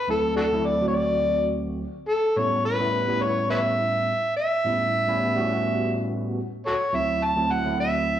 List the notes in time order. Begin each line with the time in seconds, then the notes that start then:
0.07 D2 F#3 A3 C4 E4 A4
0.37 D4 F#4 A4
0.52 D2 F#3 A3 C4 E4
0.66 D5
0.81 D2 F#3 A3 C4 F#4
0.88 C#5
0.95 D5
2.09 A4
2.36 A2 G3 B3 C#4 E4 C#5
2.65 B4
2.79 A2 G3 B3 C#4 E4
3.08 A2 G3 B3 C#4 E4
3.22 C#5
3.50 B4 C#5 E5
4.37 E5
4.64 A2 G3 B3 C#4 E4
5.07 A2 G3 B3 C#4 E4
5.36 A2 G3 B3 C#4 F#4
6.67 F#4 A4 C#5
6.93 D2 F#3 A3 C4 E4 E5
7.24 A5
7.35 D2 F#3 A3 C4 E4
7.52 F#5
7.64 D2 F#3 A3 C4 E4
7.80 E5